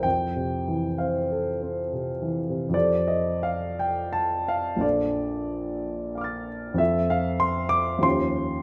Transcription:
0.03 F2 G5
0.36 C3
0.68 E3
0.98 C4 F5
1.32 A4
1.62 C4
1.93 C3
2.22 E3
2.49 C3
2.69 F2 F3 C4
2.74 G4 A4 D5
3.08 D#5
3.43 F5
3.79 G5
4.13 A5
4.48 F5
4.76 A#1 F3 D4
4.80 F4 A4 D5
6.15 F5 D6
6.21 F6 A6
6.74 F2 F3 C4
6.78 F4 A4 E5
7.10 F5
7.40 C6
7.69 D6
7.98 D#2 F3 C#4 F4
8.03 G4 C6

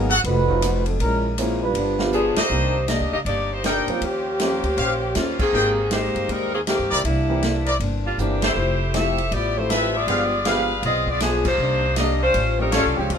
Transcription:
Already playing: G#1 F#3 G#3 B3 D#4 F#4 G#4 A#4
0.10 F#4 A4 D#5 F#5, ride
0.24 F1 F3 A3 D#4 F#4 B4, ride
0.28 F#4
0.48 F#3 A3 C4 D#4 F4, kick
0.62 F3 A3 D#4 F#4, cross-stick, hi-hat pedal, ride
0.86 F#3 C4 D#4 A4, ride
0.99 A#1 A#2 E3 G#3 C#4 E4 A#4, ride
1.38 A#2 E3 G#3 A#3 C4 C#4 E4, hi-hat pedal, ride
1.61 G3 D4 F4 B4
1.74 G1 G2 F3 B3 D4, ride
1.99 F3 G3 B3 D4 F4, snare
2.12 G2 F3 B3 D4 G#4, hi-hat pedal
2.36 A#3 D#4 G4 A#4 C5 D5 D#5, muted upright bass stroke, snare, ride
2.50 C2 C3 D#3 A#3 C4 D4 G4
2.88 C3 D#3 A#3 D4 G4 D#5, snare, hi-hat pedal, ride
3.01 D2
3.13 C#2 A#3 D4 G4 D#5
3.25 G1 C3 D#3 A#3 D4 D#4 G4 D5, ride
3.52 A#3 D#4 G4 C5
3.64 C3 D#3 G3 A#3 D4 D#4 A#4 C5 D5 G5, snare, hi-hat pedal, ride
3.87 F3 A#3 C4 C#4 F4, muted upright bass stroke, ride
4.01 D#2 D#3 F3 A#3 C#4 G4 C5, ride
4.39 D#3 F3 A#3 C4 C#4 G4 C5, snare, hi-hat pedal, ride
4.63 D2, ride
4.77 A#1 D#3 C#4 G4 C5 C#5 F5, ride
5.15 D#2 D#3 G3 A#3 C#4 F4 G4 C5, snare, hi-hat pedal, ride
5.39 D#3 A#3 C4 G#4, kick, crash
5.53 G#1 G#3 A#3 C4 D#4 G4 G#4 A#4 C5 G5
5.91 G#3 A#3 C4 D#4 G4 A#4 C5, snare, hi-hat pedal, ride
6.15 G1, ride
6.29 D#2 G3 G#3 C4 D#4 G4 A#4, ride
6.54 D#3 A#3 C4 G#4
6.67 D#3 G#3 A#3 C4 G4 A#4, snare, hi-hat pedal, ride
6.79 G2
6.91 C#2 E4 A#4 C5 D5
7.04 C2 C3 E3 G3 A#3 D4 E4, ride
7.29 E3 A#3 C4 D4 G4
7.43 C3 E3 A#3 D4, snare, hi-hat pedal, ride
7.66 E4 A#4 C5 D5, ride
7.80 G1 C3 E3 A#3 D4, ride
8.05 G3 A#3 D4 F4
8.18 G1 C3 E3 A#3 C4 D4 G4, hi-hat pedal
8.42 A3 E4 F4 G4 A4 C5, snare, ride
8.55 F1 F3 A3 E4 G4
8.94 F3 A3 C4 E4 G4 A4 E5, snare, hi-hat pedal, ride
9.18 ride
9.31 A1 F3 A3 B3 E4 G4 D5, ride
9.57 F3 A3 C4 E4 G4 A4 C5
9.69 F3 G3 A3 C4 E4 F4 G4 A4 B4 E5, snare, hi-hat pedal, ride
9.96 B3 F4 G#4 D5
10.07 G1 F3 G3 G#3 B3 D4 F4 G4 G#4 B4 F5, ride
10.45 F3 G3 G#3 B3 D4 F4 G4 G#4 B4 F5, snare, hi-hat pedal, ride
10.49 F5
10.83 B1 G3 B3 C4 F4 G#4 D#5, ride
11.07 B3 F4 G#4 D5, kick
11.20 F3 G3 B3 D4 F4 G#4, snare, hi-hat pedal, ride
11.45 A#3 D#4 G4 C5, kick, crash
11.58 C2 C3 D#3 A#3 D4
11.96 C3 D#3 A#3 D4 G4 D#5, snare, hi-hat pedal, ride
12.23 G3 C#4 F4 C5
12.34 A1 A2 G3 C#4 F4, ride
12.58 F3 G3 A3 C4 C#4 D#4 G4 A#4
12.71 A2 G3 C#4 F4 G4 A4 C#5, snare, hi-hat pedal, ride
12.85 C2
12.96 C#2 F3 G#3 C4 C#4 D4 G4
13.10 D2 D3 G#3 C4 D4 F4, ride

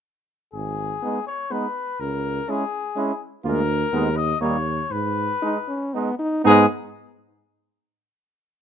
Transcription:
0.53 G#1 G#4
1.02 G#3 B3 D#4
1.26 C#5
1.50 G#3 B3 D#4 B4
2.00 C#2 A#4
2.48 G#3 C#4 E4 G#4
2.95 G#3 C#4 E4
3.44 D2 G#3 A#3 F4 A#4
3.92 D#2 G#3 B3 D#4
4.17 D#5
4.41 D#2 G3 A#3 D#4 C#5
4.91 G#2 B4
5.42 G#3 D#4
5.68 C#4
5.94 G#3 B3 D#4
6.19 D#4
6.44 G#2 G#3 B3 D#4 G#4

